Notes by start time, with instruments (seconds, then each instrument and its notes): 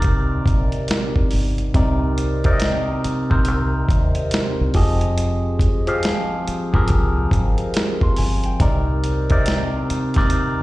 Already playing: tine electric piano C3 C4 D#4 A#4 D5
0.02 fingered electric bass C2, kick, closed hi-hat
0.46 fingered electric bass A#1, kick, closed hi-hat
0.72 closed hi-hat
0.88 snare, closed hi-hat
1.16 kick
1.31 fingered electric bass G1, open hi-hat
1.58 closed hi-hat
1.74 fingered electric bass C2, tine electric piano C3 C4 D#4 A#4 D5, kick, closed hi-hat
2.18 closed hi-hat
2.44 tine electric piano C3 C4 D#4 A#4 D5, kick, closed hi-hat
2.53 tine electric piano D#5
2.60 snare, closed hi-hat
3.04 muted fingered electric bass stroke, closed hi-hat
3.30 fingered electric bass A#1, tine electric piano C3 C4 D#4 A#4 C5, kick
3.45 fingered electric bass C2, closed hi-hat
3.89 fingered electric bass D#2, kick, closed hi-hat
4.15 closed hi-hat
4.31 snare, closed hi-hat
4.61 fingered electric bass C2
4.74 fingered electric bass F1, tine electric piano F3 C4 G4 G#4 D#5, kick, open hi-hat
5.01 closed hi-hat
5.18 closed hi-hat
5.59 kick, closed hi-hat
5.87 tine electric piano F3 C4 G4 G#4 F5, closed hi-hat
6.03 snare, closed hi-hat
6.47 muted fingered electric bass stroke, closed hi-hat
6.73 fingered electric bass G#1, tine electric piano F3 C4 G4 G#4 A#4, kick
6.88 fingered electric bass C2, kick, closed hi-hat
7.31 fingered electric bass G#1, kick, closed hi-hat
7.58 closed hi-hat
7.74 snare, closed hi-hat
8.01 tine electric piano C6, kick
8.16 fingered electric bass G1, tine electric piano G#5, open hi-hat
8.44 tine electric piano G5, closed hi-hat
8.60 fingered electric bass C2, tine electric piano C3 C4 D#4 A#4 D5, kick, closed hi-hat
9.04 closed hi-hat
9.30 tine electric piano C3 C4 D#4 A#4 D5, kick, closed hi-hat
9.46 snare, closed hi-hat
9.90 muted fingered electric bass stroke, closed hi-hat
10.14 fingered electric bass D#2, tine electric piano C3 C4 D#4 A#4 D5, kick, snare, closed hi-hat
10.30 closed hi-hat